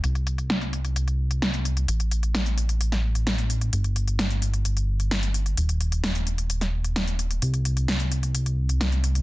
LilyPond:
<<
  \new Staff \with { instrumentName = "Analog synth bass" } { \clef bass \time 4/4 \key c \dorian \tempo 4 = 130 c,1 | a,,1 | g,,1 | ees,,1 |
c,1 | }
  \new DrumStaff \with { instrumentName = "Drums" } \drummode { \time 4/4 hh16 hh16 hh16 hh16 <hh sn>16 hh16 hh16 hh16 hh16 hh8 hh16 <hh sn>16 hh16 hh16 hh16 | hh16 hh16 hh16 hh16 <hh sn>16 hh16 hh16 hh16 hh16 <hh sn>8 hh16 <hh sn>16 hh16 hh16 hh16 | hh16 hh16 hh16 hh16 <hh sn>16 hh16 hh16 hh16 hh16 hh8 hh16 <hh sn>16 hh16 hh16 hh16 | hh16 hh16 hh16 hh16 <hh sn>16 hh16 hh16 hh16 hh16 <hh sn>8 hh16 <hh sn>16 hh16 hh16 hh16 |
hh16 hh16 hh16 hh16 <hh sn>16 hh16 hh16 hh16 hh16 hh8 hh16 <hh sn>16 hh16 hh16 hh16 | }
>>